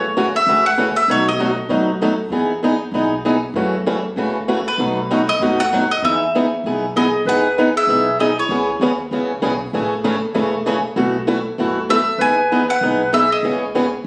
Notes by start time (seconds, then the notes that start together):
Already playing: F#1 C#5
0.17 C#3 E3 A3 C#4 F#4
0.36 E5
0.46 C#2 C#3 E3 A3 C#4 F#4
0.66 F#5
0.78 C#3 E3 A3 C#4 F#4
0.96 E5
1.08 B1 B2 F#3 A3 D#4 F#4 C#5
1.29 D#5
1.39 B2 F#3 A3 D#4 F#4
1.69 F#2 B2 F#3 A3 D#4 F#4
2.01 B2 F#3 A3 D#4 F#4
2.30 E2 E3 B3 D#4 G#4
2.63 E3 B3 D#4 G#4
2.92 B1 E3 B3 D#4 G#4
3.25 E3 B3 D#4 G#4
3.54 F#2 C#3 E3 A3 C#4 F#4
3.86 C#3 E3 A3 C#4 F#4
4.16 C#2 C#3 E3 A3 C#4 F#4
4.48 C#3 E3 A3 C#4 F#4
4.68 B4
4.78 B1 B2 F#3 A3 D#4 F#4
5.11 B2 F#3 A3 D#4 F#4
5.29 D#5
5.39 F#1 B2 F#3 A3 D#4 F#4
5.60 F#5
5.73 B2 F#3 A3 D#4 F#4
5.91 D#5
6.02 E2 E3 B3 D#4 G#4 E5
6.35 E3 B3 D#4 G#4
6.64 B1 E3 B3 D#4 G#4
6.96 E3 B3 D#4 G#4 D#5
7.25 E2 E3 B3 D#4 G#4 B4 F#5
7.58 E3 B3 D#4 G#4
7.76 G#4 E5
7.87 B1 E3 B3 D#4 G#4
8.19 E3 B3 D#4 G#4 D#5
8.38 E4 C#5
8.49 C#2 C#3 E3 B3 C#4 G#4
8.80 D#2 C#3 E3 B3 C#4 G#4
9.11 C#2 C#3 E3 B3 C#4 G#4
9.42 B1 C#3 E3 B3 C#4 G#4
9.73 A1 C#3 E3 A3 C#4 G#4
10.04 C#3 E3 A3 C#4 G#4
10.34 E1 C#3 E3 A3 C#4 G#4
10.66 C#3 E3 A3 C#4 G#4
10.96 B1 B2 E3 A3 E4 F#4
11.27 B2 E3 A3 E4 F#4
11.58 F#1 B2 E3 A3 E4 F#4
11.89 B2 E3 A3 E4 F#4 A4 E5
12.18 E2 E3 B3 D#4 G#4 B4 G#5
12.52 E3 B3 D#4 G#4
12.68 B4 F#5
12.81 B1 E3 B3 D#4 G#4
13.13 E3 B3 D#4 G#4 E5
13.32 G#4 D#5
13.43 C#2 C#3 E3 B3 C#4 G#4
13.75 C#3 E3 B3 C#4 G#4